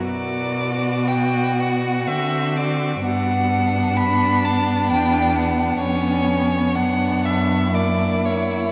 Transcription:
<<
  \new Staff \with { instrumentName = "Violin" } { \time 3/4 \key b \minor \tempo 4 = 62 d''4 g''8 fis''8 e''8 d''8 | fis''4 b''8 a''8 g''8 fis''8 | cis''4 fis''8 e''8 d''8 cis''8 | }
  \new Staff \with { instrumentName = "Violin" } { \time 3/4 \key b \minor fis'2. | d'2. | cis'4 d'4 e'4 | }
  \new Staff \with { instrumentName = "Viola" } { \time 3/4 \key b \minor b2 c'4 | b2.~ | b2 ais4 | }
  \new Staff \with { instrumentName = "Cello" } { \clef bass \time 3/4 \key b \minor b,2 d4 | g,2 e,4 | eis,4 fis,2 | }
>>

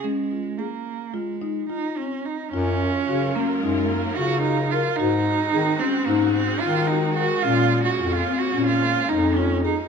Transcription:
<<
  \new Staff \with { instrumentName = "Marimba" } { \time 9/8 \key ges \lydian \tempo 4. = 73 des'8 f'8 aes'4 f'8 ees'8 f'8 c'4 | f'4 ges'8 des'8 ees'4 f'8 ges'8 bes'8 | ges'4 aes'8 des'8 ees'4 f'8 ges'8 bes'8 | des'4 f'8 c'8 des'4 ees'8 f'8 aes'8 | }
  \new Staff \with { instrumentName = "Cello" } { \time 9/8 \key ges \lydian aes4 bes4 aes4 ees'8 des'8 ees'8 | des'4. bes8 aes8 bes8 ges'8 ees'8 f'8 | ees'4. c'8 bes8 c'8 f'8 ees'8 ges'8 | f'8. ges'8 f'8 ges'8 f'8. ees'8 des'8 ees'8 | }
  \new Staff \with { instrumentName = "String section" } { \time 9/8 \key ges \lydian << { r1 r8 | <f' bes'>1~ <f' bes'>8 | <c' ges'>1~ <c' ges'>8 | <bes des'>1~ <bes des'>8 | } \\ { r1 r8 | ges1~ ges8 | aes1~ aes8~ | aes1~ aes8 | } >> }
  \new Staff \with { instrumentName = "Bass clarinet" } { \clef bass \time 9/8 \key ges \lydian r1 r8 | ges,4 des8 r8 ges,4 des4. | aes,4 ees8 r8 aes,4 ees4. | bes,4 f,8 r8 bes,4 f,4. | }
>>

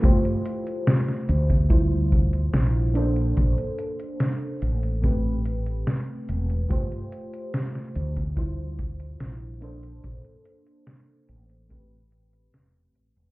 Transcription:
<<
  \new Staff \with { instrumentName = "FM electric piano" } { \time 4/4 \key g \dorian \tempo 4 = 72 <a f' g' c''>2 <g e' f' c''>4. <bes d' a' c''>8~ | <bes d' a' c''>2 <a c' g' b'>2 | <a f' g' c''>2 <g e' f' c''>4. <bes d' a' c''>8~ | <bes d' a' c''>2 <a c' g' b'>2 | }
  \new Staff \with { instrumentName = "Fretless electric bass" } { \clef bass \time 4/4 \key g \dorian g,,16 r4 r16 d,4. bes,,4 | bes,,16 r4 r16 a,,4. r8 e,,8 | g,,16 r4 r16 d,4. bes,,4 | bes,,16 r4 r16 a,,4. e,,8 a,,16 e,,16 | }
  \new DrumStaff \with { instrumentName = "Drums" } \drummode { \time 4/4 <hh bd>16 hh16 hh16 hh16 <hh sn>16 sn16 hh16 <hh bd>16 <hh bd>8 <hh bd>16 hh16 <hh sn>8 hh16 hh16 | <hh bd>16 hh16 hh16 hh16 <hh sn>8 hh16 hh16 <hh bd>8 hh16 hh16 <hh sn>8 hh16 hh16 | <hh bd>16 hh16 hh16 hh16 <hh sn>16 sn16 hh16 <hh bd>16 <hh bd>8 <hh bd>16 hh16 <hh sn>8 hh16 hh16 | <hh bd>16 hh16 hh16 hh16 <hh sn>8 hh16 hh16 <hh bd>8 hh16 hh16 <hh sn>8 hh16 hh16 | }
>>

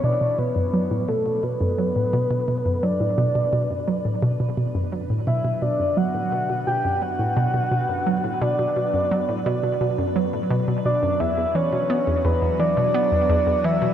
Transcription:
<<
  \new Staff \with { instrumentName = "Soft synth lead" } { \time 4/4 \key b \minor \tempo 4 = 86 d''8 b'4 a'8 b'2 | d''2 r4. e''8 | d''8 fis''4 g''8 fis''2 | d''2 r4. d''8 |
e''8 cis''4 b'8 d''4. e''8 | }
  \new Staff \with { instrumentName = "Ambient pad" } { \time 4/4 \key b \minor << { <fis b'>1~ | <fis b'>1~ | <fis b'>1~ | <fis b'>1~ |
<fis b'>1 | } \\ { <d b d'>1~ | <d b d'>1~ | <d b d'>1~ | <d b d'>1 |
<e b fis'>1 | } >> }
  \new Staff \with { instrumentName = "Synth arpeggio sound" } { \clef bass \time 4/4 \key b \minor b,16 b,16 b,16 fis,16 fis16 a,16 b,16 b,16 b,16 fis,16 fis16 a,16 b,16 b,16 b,16 fis,16 | fis16 a,16 b,16 b,16 b,16 fis,16 fis16 a,16 b,16 b,16 b,16 fis,16 fis16 a,16 b,16 b,16 | b,16 fis,16 fis16 a,16 b,16 b,16 b,16 fis,16 fis16 a,16 b,16 b,16 b,16 fis,16 fis16 a,16 | b,16 b,16 b,16 fis,16 fis16 a,16 b,16 b,16 b,16 fis,16 fis16 a,16 b,16 b,16 b,16 fis,16 |
e,16 e,16 e16 b,16 b16 e,16 e,16 e,16 e16 b,16 b16 e,16 e,16 e,16 e16 b,16 | }
>>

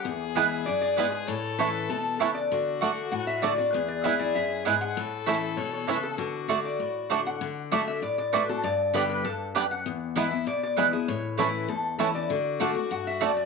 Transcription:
<<
  \new Staff \with { instrumentName = "Resonator guitar played with a steel bar" } { \time 4/4 \key d \major \tempo 4 = 196 fis''4 e''4 d''8 d''8 b'8 gis'8 | cis''4 b'4 a'4 b'8 d''8~ | d''8 r8 fis''4 fis''8 e''8 d''8 d''8 | b'8 d''8 e''8 d''8 e''4. fis''8~ |
fis''8 r8 e''4 cis''8 cis''8 b'8 a'8 | a'4. d''2 fis''8~ | fis''4 e''8 e''8 d''8 d''8 b'8 a'8 | d''4 b'8 b'8 a'4 b'8 fis''8~ |
fis''4 e''4 d''8 d''8 b'8 gis'8 | cis''4 b'4 a'4 b'8 d''8~ | d''8 r8 fis''4 fis''8 e''8 d''8 d''8 | }
  \new Staff \with { instrumentName = "Mandolin" } { \time 4/4 \key d \major r4 <b e' b' gis''>8 r4. <b e' b' gis''>8 r8 | r4 <a e' cis'' a''>8 r4. <a e' cis'' a''>8 r8 | r4 <a fis' d'' a''>8 r4. <a fis' d'' a''>8 r8 | r4 <b e' b' gis''>8 r4. <b e' b' gis''>8 r8 |
r4 <a e' cis'' a''>8 r4. <a e' cis'' a''>8 r8 | r4 <a fis' d'' a''>8 r4. <a fis' d'' a''>8 r8 | r4 <a fis' d'' a''>8 r4. <a fis' d'' a''>8 r8 | r4 <b g' d'' g''>8 r4. <b g' d'' g''>8 r8 |
r4 <b e' b' gis''>8 r4. <b e' b' gis''>8 r8 | r4 <a e' cis'' a''>8 r4. <a e' cis'' a''>8 r8 | r4 <a fis' d'' a''>8 r4. <a fis' d'' a''>8 r8 | }
  \new Staff \with { instrumentName = "Fiddle" } { \time 4/4 \key d \major gis'1 | a'2.~ a'8 r8 | fis'1 | gis'1 |
a'1 | fis'2.~ fis'8 r8 | r1 | r1 |
r1 | r1 | fis'1 | }
  \new Staff \with { instrumentName = "Five-string banjo" } { \time 4/4 \key d \major r4 <gis b e'>8 r4. <gis b e'>8 r8 | r4 <a cis' e'>8 r4. <a cis' e'>8 r8 | r4 <a d'>8 r4. <a d'>8 r8 | r4 <gis b e'>8 r4. <gis b e'>8 r8 |
r4 <a cis' e'>8 r4. <a cis' e'>8 r8 | r4 <a d'>8 r4. <a d'>8 r8 | r4 <a d'>8 r4. <a d'>8 r8 | r4 <g b d'>8 r4. <g b d'>8 r8 |
r4 <gis b e'>8 r4. <gis b e'>8 r8 | r4 <a cis' e'>8 r4. <a cis' e'>8 r8 | r4 <a d'>8 r4. <a d'>8 r8 | }
  \new Staff \with { instrumentName = "Steel-string acoustic guitar" } { \time 4/4 \key d \major << { r4 <e gis b e'>4 r2 | r4 <e a cis' e'>4 r2 | r4 <d a d' fis'>4 r4 <d a d' fis'>8 <d' fis'>8 | r4 <e gis b e'>8 <b e'>8 r2 |
r4 <e a cis' e'>4 r2 | r4 <d a d' fis'>4 r4 <d a d' fis'>4 | r4 <d a d' fis'>4 r4 <d a d' fis'>8 <d' fis'>8 | r4 <d g b g'>4 r2 |
r4 <e gis b e'>8 <b e'>8 r4 <e gis b e'>8 <b e'>8 | r4 <e a cis' e'>4 r4 <e a cis' e'>4 | r4 <d a d' fis'>8 <d' fis'>8 r2 | } \\ { e,2 fis,4 gis,4 | a,2 b,4 cis4 | d2 a,2 | e,2 fis,4 gis,4 |
a,2 b,4 cis4 | d2 a,2 | d2 a,2 | g,2 g,4 fis,4 |
e,2 b,2 | a,2 e,2 | d2 g,4 fis,4 | } >> }
>>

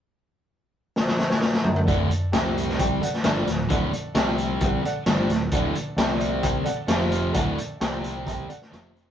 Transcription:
<<
  \new Staff \with { instrumentName = "Upright piano" } { \time 4/4 \key c \lydian \tempo 4 = 131 r1 | <a' d'' fis''>4 <g' c'' g''>4 <g' c'' g''>8 <a' d'' fis''>4 r8 | <a' d'' fis''>4 <g' c'' g''>4 <g' c'' fis''>8 <a' d'' fis''>4 r8 | <a' d'' fis''>4 <g' c'' g''>4 <g' c'' g''>8 <a' d'' fis''>8 <f' c'' f''>4 |
<a' d'' fis''>4 <g' c'' g''>4 <g' c'' g''>8 <a' d'' fis''>8 <f' c'' f''>4 | }
  \new Staff \with { instrumentName = "Distorted electric guitar" } { \clef bass \time 4/4 \key c \lydian r1 | <d, a, d>8 r8 <c g c'>4. r8 <g, d g>8 <d, a,>8 | <d, a, d>8 r8 <c g c'>4. r8 <g, d g>8 <d, a,>8 | <d, a, d>8 r8 <c g c'>4. r8 <f, c f>4 |
<d, a, d>8 r8 <c g c'>4. r8 <f, c f>4 | }
  \new Staff \with { instrumentName = "Picked electric bass" } { \clef bass \time 4/4 \key c \lydian r1 | d,,8 r8 c,4. r8 g,,8 d,,8 | d,,8 r8 c,4. r8 g,,8 d,,8 | d,,8 r8 c,4. r8 f,,4 |
d,,8 r8 c,4. r8 f,,4 | }
  \new DrumStaff \with { instrumentName = "Drums" } \drummode { \time 4/4 r4 r4 sn16 sn16 sn16 sn16 sn16 sn16 toml16 toml16 | <hh bd>8 hh8 <hh sn>8 hh16 sn16 <hh bd>8 hh16 sn16 <hh sn>8 <hh sn>8 | <hh bd>8 hh8 <hh sn>8 hh8 <hh bd>8 hh8 <hh sn>8 <hh sn>8 | <hh bd>8 hh8 <hh sn>8 hh8 <hh bd>8 hh8 <hh sn>8 hh8 |
<hh bd>8 hh8 <hh sn>8 hh8 <hh bd>8 hh16 sn16 <hh sn>8 <hh sn>8 | }
>>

